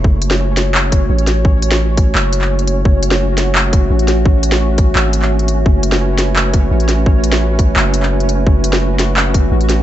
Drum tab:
HH |--x---x---x--xx-|--x---x---x--xx-|--x---x---x--xx-|--x---x---x--xx-|
CP |--------x-------|--------x--x----|--------x-------|--------x--x----|
SD |---o--o-------o-|---o------------|---o--o-------o-|---o------------|
BD |o---------o-----|o-----o---------|o---------o-----|o-----o---------|

HH |--x---x---x--xx-|--x---x---x--xx-|--x---x---x--xx-|
CP |--------x-------|--------x--x----|--------x-------|
SD |---o--o-------o-|---o------------|---o--o-------o-|
BD |o---------o-----|o-----o---------|o---------o-----|